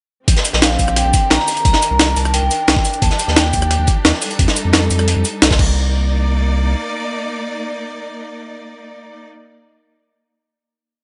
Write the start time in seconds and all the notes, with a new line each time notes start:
0.28 A#1 D3 C4 G4, kick, closed hi-hat
0.37 snare, closed hi-hat
0.44 closed hi-hat, shaker
0.53 A#1, snare
0.62 F5, snare, closed hi-hat
0.71 snare
0.79 A#1, kick, closed hi-hat, open hi-hat, shaker
0.88 cross-stick, shaker
0.96 G5, cross-stick, closed hi-hat
1.05 A#1
1.14 kick, closed hi-hat, shaker
1.30 A#1 A#5, snare, closed hi-hat
1.40 snare
1.48 open hi-hat, shaker
1.57 closed hi-hat, shaker
1.65 C2 D#3 D4 A#4 A#5, kick, closed hi-hat
1.73 snare, closed hi-hat
1.82 closed hi-hat, shaker
1.91 C2
1.99 snare, closed hi-hat
2.08 closed hi-hat
2.16 C2 A5, closed hi-hat, open hi-hat, shaker
2.25 cross-stick, closed hi-hat, shaker
2.34 G5, closed hi-hat
2.42 C2
2.51 closed hi-hat, shaker
2.68 C2, snare, closed hi-hat
2.76 kick, snare
2.85 closed hi-hat, open hi-hat, shaker
2.94 closed hi-hat, shaker
3.02 D#2 F3 G4 A5, kick, closed hi-hat
3.11 snare, closed hi-hat
3.19 closed hi-hat, shaker
3.28 D#2, snare
3.36 G5, snare, closed hi-hat
3.45 snare
3.53 D#2, kick, closed hi-hat, open hi-hat, shaker
3.62 cross-stick, shaker
3.71 cross-stick, closed hi-hat
3.79 D#2
3.87 kick, closed hi-hat, shaker
4.05 D#2, snare, closed hi-hat
4.13 snare
4.21 G3 D#4 A4, open hi-hat, shaker
4.31 closed hi-hat, shaker
4.39 F2, kick, closed hi-hat
4.48 snare, closed hi-hat
4.56 closed hi-hat, shaker
4.65 F2
4.73 snare, closed hi-hat
4.82 closed hi-hat
4.91 F2, closed hi-hat, open hi-hat, shaker
4.99 cross-stick, closed hi-hat, shaker
5.08 closed hi-hat
5.16 F2
5.25 closed hi-hat, shaker
5.42 C2, snare, closed hi-hat
5.51 kick, snare, closed hi-hat
5.59 C2 A#3 D#4 D5, kick, crash